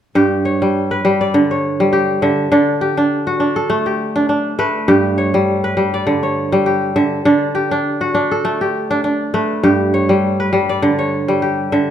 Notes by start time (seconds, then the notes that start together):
0.15 G2 G4
0.45 C#5
0.62 G3
0.91 B4
1.05 G3
1.21 D5
1.34 D3
1.51 C#5
1.80 G3
1.93 G4
2.22 D3 E5
2.52 D3 D4
2.81 G4
2.97 D4
3.27 F#4
3.40 D4
3.56 A4
3.70 A3
3.86 G4
4.16 D4
4.29 D4
4.59 A3 B4
4.88 G2 G4
5.18 C#5
5.34 G3
5.64 B4
5.77 G3
5.94 D5
6.07 D3
6.23 C#5
6.52 G3
6.66 G4
6.96 D3 E5
7.25 D3 D4
7.55 G4
7.71 D4
8.01 F#4
8.14 D4
8.31 A4
8.45 A3
8.61 G4
8.91 D4
9.04 D4
9.34 A3 B4
9.63 G2 G4
9.94 C#5
10.09 G3
10.40 B4
10.53 G3
10.69 D5
10.82 D3
10.99 C#5
11.28 G3
11.42 G4
11.72 D3 E5